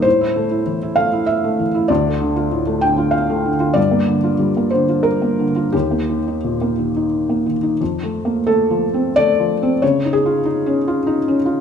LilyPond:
<<
  \new Staff \with { instrumentName = "Felt piano" } { \time 3/4 \key f \major \tempo 4 = 95 c''4. f''8 e''4 | d''4. g''8 f''4 | d''4. c''8 bes'4 | g'2~ g'8 r8 |
r4 a'4 d''4 | des''8 aes'2 r8 | }
  \new Staff \with { instrumentName = "Felt piano" } { \time 3/4 \key f \major a,16 e'16 a16 e'16 e16 e'16 a16 e'8 a16 e16 e'16 | d,16 a16 d16 f'16 a,16 a16 d16 f'8 a16 d16 f'16 | g,16 bes16 d16 f'16 g16 bes16 d16 f'8 bes16 d16 f'16 | ees,16 bes16 ees16 ees'16 bes,16 bes16 ees16 ees'8 bes16 ees16 ees'16 |
\tuplet 3/2 { f,8 a8 bes8 a8 f8 c'8 a8 f8 c'8 } | \tuplet 3/2 { des8 ees'8 f'8 ees'8 des'8 f'8 ees'8 des'8 f'8 } | }
>>